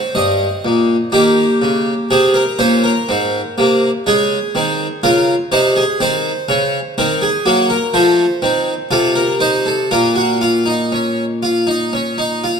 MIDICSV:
0, 0, Header, 1, 2, 480
1, 0, Start_track
1, 0, Key_signature, -5, "minor"
1, 0, Tempo, 981997
1, 1035, Time_signature, 4, 2, 24, 8
1, 1996, Tempo, 964630
1, 4396, Tempo, 1008403
1, 6154, End_track
2, 0, Start_track
2, 0, Title_t, "Harpsichord"
2, 0, Program_c, 0, 6
2, 0, Note_on_c, 0, 60, 64
2, 0, Note_on_c, 0, 73, 66
2, 58, Note_off_c, 0, 73, 0
2, 73, Note_on_c, 0, 43, 80
2, 74, Note_on_c, 0, 75, 73
2, 223, Note_off_c, 0, 43, 0
2, 316, Note_on_c, 0, 46, 77
2, 464, Note_off_c, 0, 46, 0
2, 534, Note_off_c, 0, 60, 0
2, 540, Note_off_c, 0, 75, 0
2, 548, Note_on_c, 0, 58, 72
2, 550, Note_on_c, 0, 51, 91
2, 550, Note_on_c, 0, 67, 75
2, 700, Note_off_c, 0, 51, 0
2, 790, Note_on_c, 0, 49, 76
2, 940, Note_off_c, 0, 49, 0
2, 1017, Note_off_c, 0, 58, 0
2, 1018, Note_off_c, 0, 67, 0
2, 1029, Note_on_c, 0, 68, 80
2, 1030, Note_on_c, 0, 48, 71
2, 1030, Note_on_c, 0, 60, 82
2, 1143, Note_on_c, 0, 70, 64
2, 1148, Note_off_c, 0, 68, 0
2, 1180, Note_off_c, 0, 60, 0
2, 1181, Note_off_c, 0, 48, 0
2, 1265, Note_on_c, 0, 46, 77
2, 1265, Note_on_c, 0, 72, 88
2, 1266, Note_off_c, 0, 70, 0
2, 1266, Note_on_c, 0, 61, 83
2, 1387, Note_off_c, 0, 72, 0
2, 1387, Note_on_c, 0, 70, 69
2, 1418, Note_off_c, 0, 46, 0
2, 1418, Note_off_c, 0, 61, 0
2, 1509, Note_on_c, 0, 60, 78
2, 1510, Note_on_c, 0, 44, 76
2, 1660, Note_off_c, 0, 60, 0
2, 1661, Note_off_c, 0, 44, 0
2, 1749, Note_on_c, 0, 48, 64
2, 1751, Note_on_c, 0, 58, 69
2, 1900, Note_off_c, 0, 48, 0
2, 1901, Note_off_c, 0, 58, 0
2, 1973, Note_off_c, 0, 70, 0
2, 1987, Note_on_c, 0, 56, 90
2, 1988, Note_on_c, 0, 49, 77
2, 1988, Note_on_c, 0, 68, 79
2, 2138, Note_off_c, 0, 56, 0
2, 2139, Note_off_c, 0, 49, 0
2, 2228, Note_on_c, 0, 51, 94
2, 2230, Note_on_c, 0, 60, 91
2, 2379, Note_off_c, 0, 51, 0
2, 2381, Note_off_c, 0, 60, 0
2, 2457, Note_off_c, 0, 68, 0
2, 2469, Note_on_c, 0, 49, 88
2, 2469, Note_on_c, 0, 65, 98
2, 2470, Note_on_c, 0, 70, 86
2, 2620, Note_off_c, 0, 49, 0
2, 2620, Note_off_c, 0, 65, 0
2, 2620, Note_off_c, 0, 70, 0
2, 2709, Note_on_c, 0, 48, 77
2, 2710, Note_on_c, 0, 72, 81
2, 2711, Note_on_c, 0, 63, 93
2, 2828, Note_off_c, 0, 72, 0
2, 2830, Note_on_c, 0, 68, 73
2, 2859, Note_off_c, 0, 48, 0
2, 2860, Note_off_c, 0, 63, 0
2, 2948, Note_off_c, 0, 68, 0
2, 2952, Note_on_c, 0, 51, 76
2, 2952, Note_on_c, 0, 60, 94
2, 2954, Note_on_c, 0, 72, 82
2, 3100, Note_off_c, 0, 51, 0
2, 3100, Note_off_c, 0, 60, 0
2, 3191, Note_on_c, 0, 61, 100
2, 3192, Note_on_c, 0, 49, 87
2, 3339, Note_off_c, 0, 61, 0
2, 3340, Note_off_c, 0, 49, 0
2, 3416, Note_off_c, 0, 72, 0
2, 3437, Note_on_c, 0, 51, 72
2, 3437, Note_on_c, 0, 60, 82
2, 3437, Note_on_c, 0, 70, 77
2, 3550, Note_off_c, 0, 70, 0
2, 3555, Note_on_c, 0, 68, 79
2, 3584, Note_off_c, 0, 51, 0
2, 3584, Note_off_c, 0, 60, 0
2, 3669, Note_off_c, 0, 68, 0
2, 3673, Note_on_c, 0, 66, 65
2, 3675, Note_on_c, 0, 58, 65
2, 3676, Note_on_c, 0, 54, 65
2, 3789, Note_off_c, 0, 66, 0
2, 3795, Note_on_c, 0, 70, 71
2, 3823, Note_off_c, 0, 54, 0
2, 3823, Note_off_c, 0, 58, 0
2, 3910, Note_off_c, 0, 70, 0
2, 3914, Note_on_c, 0, 53, 77
2, 3914, Note_on_c, 0, 57, 85
2, 3915, Note_on_c, 0, 72, 75
2, 4062, Note_off_c, 0, 53, 0
2, 4063, Note_off_c, 0, 57, 0
2, 4155, Note_on_c, 0, 60, 84
2, 4156, Note_on_c, 0, 51, 74
2, 4305, Note_off_c, 0, 60, 0
2, 4306, Note_off_c, 0, 51, 0
2, 4383, Note_off_c, 0, 72, 0
2, 4396, Note_on_c, 0, 48, 75
2, 4397, Note_on_c, 0, 65, 93
2, 4397, Note_on_c, 0, 69, 78
2, 4510, Note_off_c, 0, 69, 0
2, 4514, Note_on_c, 0, 70, 70
2, 4542, Note_off_c, 0, 65, 0
2, 4628, Note_off_c, 0, 70, 0
2, 4633, Note_on_c, 0, 63, 73
2, 4633, Note_on_c, 0, 72, 71
2, 4747, Note_off_c, 0, 72, 0
2, 4755, Note_on_c, 0, 69, 59
2, 4780, Note_off_c, 0, 63, 0
2, 4855, Note_off_c, 0, 48, 0
2, 4868, Note_off_c, 0, 69, 0
2, 4874, Note_on_c, 0, 65, 76
2, 4875, Note_on_c, 0, 46, 70
2, 4875, Note_on_c, 0, 70, 75
2, 4988, Note_off_c, 0, 65, 0
2, 4991, Note_on_c, 0, 66, 69
2, 5106, Note_off_c, 0, 66, 0
2, 5114, Note_on_c, 0, 65, 83
2, 5228, Note_off_c, 0, 65, 0
2, 5229, Note_on_c, 0, 63, 67
2, 5346, Note_off_c, 0, 63, 0
2, 5355, Note_on_c, 0, 61, 66
2, 5503, Note_off_c, 0, 61, 0
2, 5595, Note_on_c, 0, 65, 59
2, 5711, Note_off_c, 0, 65, 0
2, 5711, Note_on_c, 0, 63, 70
2, 5829, Note_off_c, 0, 63, 0
2, 5835, Note_on_c, 0, 61, 72
2, 5952, Note_off_c, 0, 61, 0
2, 5955, Note_on_c, 0, 63, 72
2, 6071, Note_off_c, 0, 63, 0
2, 6076, Note_on_c, 0, 65, 69
2, 6154, Note_off_c, 0, 46, 0
2, 6154, Note_off_c, 0, 65, 0
2, 6154, Note_off_c, 0, 70, 0
2, 6154, End_track
0, 0, End_of_file